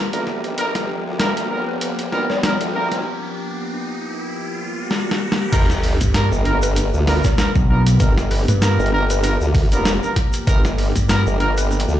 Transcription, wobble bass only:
0, 0, Header, 1, 2, 480
1, 0, Start_track
1, 0, Tempo, 618557
1, 449, Time_signature, 4, 2, 24, 8
1, 9311, End_track
2, 0, Start_track
2, 0, Title_t, "Wobble bass"
2, 0, Program_c, 0, 39
2, 104, Note_on_c, 0, 38, 96
2, 322, Note_off_c, 0, 38, 0
2, 345, Note_on_c, 0, 31, 99
2, 432, Note_off_c, 0, 31, 0
2, 451, Note_on_c, 0, 31, 98
2, 803, Note_off_c, 0, 31, 0
2, 825, Note_on_c, 0, 38, 91
2, 1153, Note_off_c, 0, 38, 0
2, 1171, Note_on_c, 0, 29, 98
2, 1633, Note_off_c, 0, 29, 0
2, 1649, Note_on_c, 0, 35, 93
2, 1762, Note_off_c, 0, 35, 0
2, 1785, Note_on_c, 0, 35, 93
2, 2003, Note_off_c, 0, 35, 0
2, 2024, Note_on_c, 0, 38, 97
2, 2242, Note_off_c, 0, 38, 0
2, 2264, Note_on_c, 0, 35, 96
2, 2369, Note_off_c, 0, 35, 0
2, 4289, Note_on_c, 0, 31, 99
2, 4642, Note_off_c, 0, 31, 0
2, 4905, Note_on_c, 0, 31, 98
2, 5363, Note_off_c, 0, 31, 0
2, 5385, Note_on_c, 0, 38, 98
2, 5603, Note_off_c, 0, 38, 0
2, 6209, Note_on_c, 0, 31, 103
2, 6562, Note_off_c, 0, 31, 0
2, 6823, Note_on_c, 0, 31, 106
2, 7281, Note_off_c, 0, 31, 0
2, 7301, Note_on_c, 0, 38, 99
2, 7521, Note_off_c, 0, 38, 0
2, 7543, Note_on_c, 0, 29, 100
2, 7762, Note_off_c, 0, 29, 0
2, 8127, Note_on_c, 0, 31, 105
2, 8481, Note_off_c, 0, 31, 0
2, 8744, Note_on_c, 0, 31, 105
2, 9202, Note_off_c, 0, 31, 0
2, 9220, Note_on_c, 0, 38, 100
2, 9311, Note_off_c, 0, 38, 0
2, 9311, End_track
0, 0, End_of_file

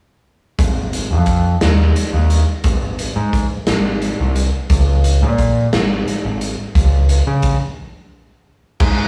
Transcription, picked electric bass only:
0, 0, Header, 1, 2, 480
1, 0, Start_track
1, 0, Key_signature, -4, "major"
1, 0, Tempo, 684932
1, 416, Time_signature, 6, 3, 24, 8
1, 6363, End_track
2, 0, Start_track
2, 0, Title_t, "Picked electric bass"
2, 0, Program_c, 0, 34
2, 414, Note_on_c, 0, 32, 77
2, 776, Note_on_c, 0, 41, 71
2, 787, Note_off_c, 0, 32, 0
2, 1087, Note_off_c, 0, 41, 0
2, 1137, Note_on_c, 0, 39, 77
2, 1344, Note_off_c, 0, 39, 0
2, 1494, Note_on_c, 0, 39, 70
2, 1702, Note_off_c, 0, 39, 0
2, 1854, Note_on_c, 0, 32, 83
2, 2166, Note_off_c, 0, 32, 0
2, 2214, Note_on_c, 0, 44, 74
2, 2422, Note_off_c, 0, 44, 0
2, 2584, Note_on_c, 0, 32, 78
2, 2891, Note_off_c, 0, 32, 0
2, 2941, Note_on_c, 0, 36, 68
2, 3147, Note_off_c, 0, 36, 0
2, 3292, Note_on_c, 0, 37, 78
2, 3659, Note_on_c, 0, 46, 83
2, 3669, Note_off_c, 0, 37, 0
2, 3968, Note_off_c, 0, 46, 0
2, 4015, Note_on_c, 0, 32, 80
2, 4223, Note_off_c, 0, 32, 0
2, 4380, Note_on_c, 0, 32, 72
2, 4585, Note_off_c, 0, 32, 0
2, 4731, Note_on_c, 0, 37, 82
2, 5044, Note_off_c, 0, 37, 0
2, 5095, Note_on_c, 0, 49, 82
2, 5303, Note_off_c, 0, 49, 0
2, 6171, Note_on_c, 0, 44, 82
2, 6363, Note_off_c, 0, 44, 0
2, 6363, End_track
0, 0, End_of_file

